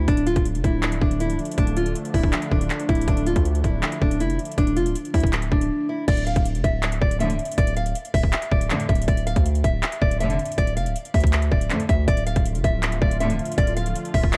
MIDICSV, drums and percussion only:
0, 0, Header, 1, 2, 480
1, 0, Start_track
1, 0, Key_signature, -1, "minor"
1, 0, Tempo, 375000
1, 100, Time_signature, 4, 2, 24, 8
1, 18394, End_track
2, 0, Start_track
2, 0, Title_t, "Drums"
2, 101, Note_on_c, 9, 36, 114
2, 101, Note_on_c, 9, 42, 88
2, 219, Note_off_c, 9, 42, 0
2, 219, Note_on_c, 9, 42, 63
2, 229, Note_off_c, 9, 36, 0
2, 340, Note_off_c, 9, 42, 0
2, 340, Note_on_c, 9, 42, 77
2, 460, Note_off_c, 9, 42, 0
2, 460, Note_on_c, 9, 42, 64
2, 462, Note_on_c, 9, 36, 94
2, 581, Note_off_c, 9, 42, 0
2, 581, Note_on_c, 9, 42, 82
2, 590, Note_off_c, 9, 36, 0
2, 703, Note_off_c, 9, 42, 0
2, 703, Note_on_c, 9, 42, 51
2, 820, Note_on_c, 9, 36, 76
2, 822, Note_off_c, 9, 42, 0
2, 822, Note_on_c, 9, 42, 76
2, 948, Note_off_c, 9, 36, 0
2, 950, Note_off_c, 9, 42, 0
2, 1057, Note_on_c, 9, 42, 83
2, 1060, Note_on_c, 9, 39, 112
2, 1178, Note_off_c, 9, 42, 0
2, 1178, Note_on_c, 9, 42, 61
2, 1188, Note_off_c, 9, 39, 0
2, 1299, Note_on_c, 9, 36, 100
2, 1306, Note_off_c, 9, 42, 0
2, 1423, Note_on_c, 9, 42, 67
2, 1427, Note_off_c, 9, 36, 0
2, 1539, Note_off_c, 9, 42, 0
2, 1539, Note_on_c, 9, 42, 72
2, 1661, Note_off_c, 9, 42, 0
2, 1661, Note_on_c, 9, 42, 55
2, 1779, Note_off_c, 9, 42, 0
2, 1779, Note_on_c, 9, 42, 43
2, 1860, Note_off_c, 9, 42, 0
2, 1860, Note_on_c, 9, 42, 56
2, 1939, Note_off_c, 9, 42, 0
2, 1939, Note_on_c, 9, 42, 72
2, 2020, Note_off_c, 9, 42, 0
2, 2020, Note_on_c, 9, 36, 110
2, 2020, Note_on_c, 9, 42, 85
2, 2139, Note_off_c, 9, 42, 0
2, 2139, Note_on_c, 9, 42, 61
2, 2148, Note_off_c, 9, 36, 0
2, 2260, Note_off_c, 9, 42, 0
2, 2260, Note_on_c, 9, 42, 78
2, 2380, Note_off_c, 9, 42, 0
2, 2380, Note_on_c, 9, 42, 65
2, 2501, Note_off_c, 9, 42, 0
2, 2501, Note_on_c, 9, 42, 83
2, 2624, Note_off_c, 9, 42, 0
2, 2624, Note_on_c, 9, 42, 50
2, 2740, Note_on_c, 9, 36, 79
2, 2742, Note_on_c, 9, 46, 84
2, 2752, Note_off_c, 9, 42, 0
2, 2860, Note_off_c, 9, 36, 0
2, 2860, Note_on_c, 9, 36, 99
2, 2870, Note_off_c, 9, 46, 0
2, 2976, Note_on_c, 9, 42, 87
2, 2979, Note_on_c, 9, 39, 114
2, 2988, Note_off_c, 9, 36, 0
2, 3098, Note_off_c, 9, 42, 0
2, 3098, Note_on_c, 9, 42, 60
2, 3107, Note_off_c, 9, 39, 0
2, 3219, Note_on_c, 9, 36, 98
2, 3226, Note_off_c, 9, 42, 0
2, 3342, Note_on_c, 9, 42, 68
2, 3347, Note_off_c, 9, 36, 0
2, 3458, Note_off_c, 9, 42, 0
2, 3458, Note_on_c, 9, 42, 74
2, 3459, Note_on_c, 9, 39, 94
2, 3579, Note_off_c, 9, 42, 0
2, 3579, Note_on_c, 9, 42, 55
2, 3587, Note_off_c, 9, 39, 0
2, 3698, Note_off_c, 9, 42, 0
2, 3698, Note_on_c, 9, 42, 43
2, 3699, Note_on_c, 9, 36, 98
2, 3778, Note_off_c, 9, 42, 0
2, 3778, Note_on_c, 9, 42, 58
2, 3827, Note_off_c, 9, 36, 0
2, 3859, Note_off_c, 9, 42, 0
2, 3859, Note_on_c, 9, 42, 70
2, 3939, Note_off_c, 9, 42, 0
2, 3939, Note_on_c, 9, 36, 117
2, 3939, Note_on_c, 9, 42, 88
2, 4058, Note_off_c, 9, 42, 0
2, 4058, Note_on_c, 9, 42, 62
2, 4067, Note_off_c, 9, 36, 0
2, 4180, Note_off_c, 9, 42, 0
2, 4180, Note_on_c, 9, 42, 79
2, 4299, Note_off_c, 9, 42, 0
2, 4299, Note_on_c, 9, 42, 66
2, 4301, Note_on_c, 9, 36, 91
2, 4420, Note_off_c, 9, 42, 0
2, 4420, Note_on_c, 9, 42, 84
2, 4429, Note_off_c, 9, 36, 0
2, 4544, Note_off_c, 9, 42, 0
2, 4544, Note_on_c, 9, 42, 52
2, 4660, Note_on_c, 9, 36, 76
2, 4662, Note_off_c, 9, 42, 0
2, 4662, Note_on_c, 9, 42, 76
2, 4788, Note_off_c, 9, 36, 0
2, 4790, Note_off_c, 9, 42, 0
2, 4897, Note_on_c, 9, 42, 82
2, 4900, Note_on_c, 9, 39, 110
2, 5018, Note_off_c, 9, 42, 0
2, 5018, Note_on_c, 9, 42, 61
2, 5028, Note_off_c, 9, 39, 0
2, 5140, Note_on_c, 9, 36, 97
2, 5146, Note_off_c, 9, 42, 0
2, 5263, Note_on_c, 9, 42, 67
2, 5268, Note_off_c, 9, 36, 0
2, 5380, Note_off_c, 9, 42, 0
2, 5380, Note_on_c, 9, 42, 70
2, 5501, Note_off_c, 9, 42, 0
2, 5501, Note_on_c, 9, 42, 57
2, 5620, Note_off_c, 9, 42, 0
2, 5620, Note_on_c, 9, 42, 42
2, 5700, Note_off_c, 9, 42, 0
2, 5700, Note_on_c, 9, 42, 58
2, 5780, Note_off_c, 9, 42, 0
2, 5780, Note_on_c, 9, 42, 70
2, 5860, Note_off_c, 9, 42, 0
2, 5860, Note_on_c, 9, 36, 114
2, 5860, Note_on_c, 9, 42, 85
2, 5979, Note_off_c, 9, 42, 0
2, 5979, Note_on_c, 9, 42, 63
2, 5988, Note_off_c, 9, 36, 0
2, 6101, Note_off_c, 9, 42, 0
2, 6101, Note_on_c, 9, 42, 75
2, 6221, Note_off_c, 9, 42, 0
2, 6221, Note_on_c, 9, 42, 63
2, 6342, Note_off_c, 9, 42, 0
2, 6342, Note_on_c, 9, 42, 85
2, 6465, Note_off_c, 9, 42, 0
2, 6465, Note_on_c, 9, 42, 52
2, 6580, Note_on_c, 9, 36, 76
2, 6581, Note_off_c, 9, 42, 0
2, 6581, Note_on_c, 9, 42, 46
2, 6582, Note_on_c, 9, 46, 83
2, 6661, Note_off_c, 9, 42, 0
2, 6661, Note_on_c, 9, 42, 64
2, 6701, Note_off_c, 9, 36, 0
2, 6701, Note_on_c, 9, 36, 96
2, 6710, Note_off_c, 9, 46, 0
2, 6740, Note_off_c, 9, 42, 0
2, 6740, Note_on_c, 9, 42, 80
2, 6818, Note_off_c, 9, 42, 0
2, 6818, Note_on_c, 9, 42, 85
2, 6821, Note_on_c, 9, 39, 114
2, 6829, Note_off_c, 9, 36, 0
2, 6939, Note_off_c, 9, 42, 0
2, 6939, Note_on_c, 9, 42, 61
2, 6949, Note_off_c, 9, 39, 0
2, 7060, Note_on_c, 9, 36, 100
2, 7067, Note_off_c, 9, 42, 0
2, 7184, Note_on_c, 9, 42, 67
2, 7188, Note_off_c, 9, 36, 0
2, 7312, Note_off_c, 9, 42, 0
2, 7781, Note_on_c, 9, 36, 122
2, 7781, Note_on_c, 9, 42, 93
2, 7781, Note_on_c, 9, 49, 108
2, 7899, Note_off_c, 9, 42, 0
2, 7899, Note_on_c, 9, 42, 66
2, 7909, Note_off_c, 9, 36, 0
2, 7909, Note_off_c, 9, 49, 0
2, 8021, Note_off_c, 9, 42, 0
2, 8021, Note_on_c, 9, 42, 79
2, 8141, Note_off_c, 9, 42, 0
2, 8141, Note_on_c, 9, 42, 66
2, 8142, Note_on_c, 9, 36, 100
2, 8262, Note_off_c, 9, 42, 0
2, 8262, Note_on_c, 9, 42, 85
2, 8270, Note_off_c, 9, 36, 0
2, 8384, Note_off_c, 9, 42, 0
2, 8384, Note_on_c, 9, 42, 54
2, 8500, Note_on_c, 9, 36, 80
2, 8502, Note_off_c, 9, 42, 0
2, 8502, Note_on_c, 9, 42, 76
2, 8628, Note_off_c, 9, 36, 0
2, 8630, Note_off_c, 9, 42, 0
2, 8738, Note_on_c, 9, 42, 86
2, 8741, Note_on_c, 9, 39, 117
2, 8859, Note_off_c, 9, 42, 0
2, 8859, Note_on_c, 9, 42, 64
2, 8869, Note_off_c, 9, 39, 0
2, 8980, Note_on_c, 9, 36, 99
2, 8987, Note_off_c, 9, 42, 0
2, 9104, Note_on_c, 9, 42, 69
2, 9108, Note_off_c, 9, 36, 0
2, 9220, Note_off_c, 9, 42, 0
2, 9220, Note_on_c, 9, 42, 73
2, 9341, Note_off_c, 9, 42, 0
2, 9341, Note_on_c, 9, 42, 59
2, 9460, Note_off_c, 9, 42, 0
2, 9460, Note_on_c, 9, 42, 44
2, 9539, Note_off_c, 9, 42, 0
2, 9539, Note_on_c, 9, 42, 60
2, 9619, Note_off_c, 9, 42, 0
2, 9619, Note_on_c, 9, 42, 73
2, 9699, Note_off_c, 9, 42, 0
2, 9699, Note_on_c, 9, 42, 93
2, 9700, Note_on_c, 9, 36, 117
2, 9818, Note_off_c, 9, 42, 0
2, 9818, Note_on_c, 9, 42, 66
2, 9828, Note_off_c, 9, 36, 0
2, 9940, Note_off_c, 9, 42, 0
2, 9940, Note_on_c, 9, 42, 80
2, 10059, Note_off_c, 9, 42, 0
2, 10059, Note_on_c, 9, 42, 67
2, 10180, Note_off_c, 9, 42, 0
2, 10180, Note_on_c, 9, 42, 88
2, 10303, Note_off_c, 9, 42, 0
2, 10303, Note_on_c, 9, 42, 53
2, 10420, Note_on_c, 9, 36, 79
2, 10421, Note_on_c, 9, 46, 84
2, 10431, Note_off_c, 9, 42, 0
2, 10540, Note_off_c, 9, 36, 0
2, 10540, Note_on_c, 9, 36, 95
2, 10549, Note_off_c, 9, 46, 0
2, 10657, Note_on_c, 9, 42, 87
2, 10660, Note_on_c, 9, 39, 116
2, 10668, Note_off_c, 9, 36, 0
2, 10780, Note_off_c, 9, 42, 0
2, 10780, Note_on_c, 9, 42, 63
2, 10788, Note_off_c, 9, 39, 0
2, 10900, Note_on_c, 9, 36, 102
2, 10908, Note_off_c, 9, 42, 0
2, 11024, Note_on_c, 9, 42, 72
2, 11028, Note_off_c, 9, 36, 0
2, 11140, Note_off_c, 9, 42, 0
2, 11140, Note_on_c, 9, 39, 97
2, 11140, Note_on_c, 9, 42, 71
2, 11261, Note_off_c, 9, 42, 0
2, 11261, Note_on_c, 9, 42, 60
2, 11268, Note_off_c, 9, 39, 0
2, 11380, Note_off_c, 9, 42, 0
2, 11380, Note_on_c, 9, 36, 102
2, 11380, Note_on_c, 9, 42, 44
2, 11460, Note_off_c, 9, 42, 0
2, 11460, Note_on_c, 9, 42, 60
2, 11508, Note_off_c, 9, 36, 0
2, 11541, Note_off_c, 9, 42, 0
2, 11541, Note_on_c, 9, 42, 72
2, 11620, Note_on_c, 9, 36, 117
2, 11621, Note_off_c, 9, 42, 0
2, 11621, Note_on_c, 9, 42, 89
2, 11741, Note_off_c, 9, 42, 0
2, 11741, Note_on_c, 9, 42, 67
2, 11748, Note_off_c, 9, 36, 0
2, 11862, Note_off_c, 9, 42, 0
2, 11862, Note_on_c, 9, 42, 80
2, 11982, Note_off_c, 9, 42, 0
2, 11982, Note_on_c, 9, 36, 99
2, 11982, Note_on_c, 9, 42, 65
2, 12103, Note_off_c, 9, 42, 0
2, 12103, Note_on_c, 9, 42, 87
2, 12110, Note_off_c, 9, 36, 0
2, 12225, Note_off_c, 9, 42, 0
2, 12225, Note_on_c, 9, 42, 54
2, 12341, Note_on_c, 9, 36, 78
2, 12343, Note_off_c, 9, 42, 0
2, 12343, Note_on_c, 9, 42, 76
2, 12469, Note_off_c, 9, 36, 0
2, 12471, Note_off_c, 9, 42, 0
2, 12578, Note_on_c, 9, 42, 84
2, 12581, Note_on_c, 9, 39, 113
2, 12700, Note_off_c, 9, 42, 0
2, 12700, Note_on_c, 9, 42, 64
2, 12709, Note_off_c, 9, 39, 0
2, 12821, Note_on_c, 9, 36, 104
2, 12828, Note_off_c, 9, 42, 0
2, 12946, Note_on_c, 9, 42, 73
2, 12949, Note_off_c, 9, 36, 0
2, 13063, Note_off_c, 9, 42, 0
2, 13063, Note_on_c, 9, 42, 73
2, 13184, Note_off_c, 9, 42, 0
2, 13184, Note_on_c, 9, 42, 56
2, 13303, Note_off_c, 9, 42, 0
2, 13303, Note_on_c, 9, 42, 44
2, 13382, Note_off_c, 9, 42, 0
2, 13382, Note_on_c, 9, 42, 57
2, 13462, Note_off_c, 9, 42, 0
2, 13462, Note_on_c, 9, 42, 73
2, 13541, Note_on_c, 9, 36, 113
2, 13542, Note_off_c, 9, 42, 0
2, 13542, Note_on_c, 9, 42, 89
2, 13660, Note_off_c, 9, 42, 0
2, 13660, Note_on_c, 9, 42, 65
2, 13669, Note_off_c, 9, 36, 0
2, 13783, Note_off_c, 9, 42, 0
2, 13783, Note_on_c, 9, 42, 80
2, 13903, Note_off_c, 9, 42, 0
2, 13903, Note_on_c, 9, 42, 65
2, 14024, Note_off_c, 9, 42, 0
2, 14024, Note_on_c, 9, 42, 85
2, 14145, Note_off_c, 9, 42, 0
2, 14145, Note_on_c, 9, 42, 53
2, 14261, Note_off_c, 9, 42, 0
2, 14261, Note_on_c, 9, 36, 79
2, 14261, Note_on_c, 9, 42, 46
2, 14263, Note_on_c, 9, 46, 85
2, 14342, Note_off_c, 9, 42, 0
2, 14342, Note_on_c, 9, 42, 63
2, 14381, Note_off_c, 9, 36, 0
2, 14381, Note_on_c, 9, 36, 102
2, 14391, Note_off_c, 9, 46, 0
2, 14421, Note_off_c, 9, 42, 0
2, 14421, Note_on_c, 9, 42, 85
2, 14499, Note_off_c, 9, 42, 0
2, 14499, Note_on_c, 9, 42, 83
2, 14502, Note_on_c, 9, 39, 118
2, 14509, Note_off_c, 9, 36, 0
2, 14620, Note_off_c, 9, 42, 0
2, 14620, Note_on_c, 9, 42, 62
2, 14630, Note_off_c, 9, 39, 0
2, 14740, Note_on_c, 9, 36, 101
2, 14748, Note_off_c, 9, 42, 0
2, 14865, Note_on_c, 9, 42, 70
2, 14868, Note_off_c, 9, 36, 0
2, 14980, Note_off_c, 9, 42, 0
2, 14980, Note_on_c, 9, 42, 74
2, 14981, Note_on_c, 9, 39, 95
2, 15102, Note_off_c, 9, 42, 0
2, 15102, Note_on_c, 9, 42, 56
2, 15109, Note_off_c, 9, 39, 0
2, 15221, Note_on_c, 9, 36, 97
2, 15222, Note_off_c, 9, 42, 0
2, 15222, Note_on_c, 9, 42, 70
2, 15349, Note_off_c, 9, 36, 0
2, 15350, Note_off_c, 9, 42, 0
2, 15460, Note_on_c, 9, 36, 120
2, 15460, Note_on_c, 9, 42, 93
2, 15579, Note_off_c, 9, 42, 0
2, 15579, Note_on_c, 9, 42, 63
2, 15588, Note_off_c, 9, 36, 0
2, 15701, Note_off_c, 9, 42, 0
2, 15701, Note_on_c, 9, 42, 79
2, 15821, Note_off_c, 9, 42, 0
2, 15821, Note_on_c, 9, 42, 65
2, 15822, Note_on_c, 9, 36, 99
2, 15943, Note_off_c, 9, 42, 0
2, 15943, Note_on_c, 9, 42, 86
2, 15950, Note_off_c, 9, 36, 0
2, 16065, Note_off_c, 9, 42, 0
2, 16065, Note_on_c, 9, 42, 52
2, 16180, Note_on_c, 9, 36, 82
2, 16181, Note_off_c, 9, 42, 0
2, 16181, Note_on_c, 9, 42, 81
2, 16308, Note_off_c, 9, 36, 0
2, 16309, Note_off_c, 9, 42, 0
2, 16417, Note_on_c, 9, 42, 88
2, 16420, Note_on_c, 9, 39, 115
2, 16539, Note_off_c, 9, 42, 0
2, 16539, Note_on_c, 9, 42, 59
2, 16548, Note_off_c, 9, 39, 0
2, 16660, Note_on_c, 9, 36, 103
2, 16667, Note_off_c, 9, 42, 0
2, 16784, Note_on_c, 9, 42, 68
2, 16788, Note_off_c, 9, 36, 0
2, 16902, Note_off_c, 9, 42, 0
2, 16902, Note_on_c, 9, 42, 75
2, 17023, Note_off_c, 9, 42, 0
2, 17023, Note_on_c, 9, 42, 58
2, 17142, Note_off_c, 9, 42, 0
2, 17142, Note_on_c, 9, 42, 43
2, 17222, Note_off_c, 9, 42, 0
2, 17222, Note_on_c, 9, 42, 57
2, 17301, Note_off_c, 9, 42, 0
2, 17301, Note_on_c, 9, 42, 72
2, 17380, Note_off_c, 9, 42, 0
2, 17380, Note_on_c, 9, 36, 121
2, 17380, Note_on_c, 9, 42, 88
2, 17500, Note_off_c, 9, 42, 0
2, 17500, Note_on_c, 9, 42, 64
2, 17508, Note_off_c, 9, 36, 0
2, 17621, Note_off_c, 9, 42, 0
2, 17621, Note_on_c, 9, 42, 80
2, 17741, Note_off_c, 9, 42, 0
2, 17741, Note_on_c, 9, 42, 66
2, 17863, Note_off_c, 9, 42, 0
2, 17863, Note_on_c, 9, 42, 87
2, 17985, Note_off_c, 9, 42, 0
2, 17985, Note_on_c, 9, 42, 53
2, 18101, Note_on_c, 9, 36, 79
2, 18103, Note_on_c, 9, 46, 81
2, 18113, Note_off_c, 9, 42, 0
2, 18221, Note_off_c, 9, 36, 0
2, 18221, Note_on_c, 9, 36, 97
2, 18231, Note_off_c, 9, 46, 0
2, 18338, Note_on_c, 9, 42, 85
2, 18341, Note_on_c, 9, 39, 116
2, 18349, Note_off_c, 9, 36, 0
2, 18394, Note_off_c, 9, 39, 0
2, 18394, Note_off_c, 9, 42, 0
2, 18394, End_track
0, 0, End_of_file